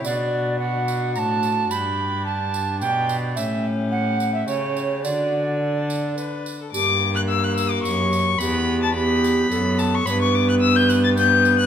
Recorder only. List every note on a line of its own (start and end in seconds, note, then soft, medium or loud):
0.04 0.58 D5 medium
0.59 1.13 F#5 loud
1.15 1.72 A5 loud
1.15 1.20 A#5 loud
1.71 2.25 B5 medium
2.26 2.80 A5 medium
2.81 3.16 G5 loud
3.36 3.66 E5 medium
3.91 4.33 F#5 medium
4.34 4.47 E5 medium
4.47 5.03 C#5 medium
5.04 6.15 D5 medium
6.74 8.36 G4 medium
8.40 8.94 G4 medium
8.95 9.50 G4 medium
9.51 10.07 A4 medium
10.06 10.11 C#5 medium
10.10 11.16 B4 medium
11.17 11.66 B4 medium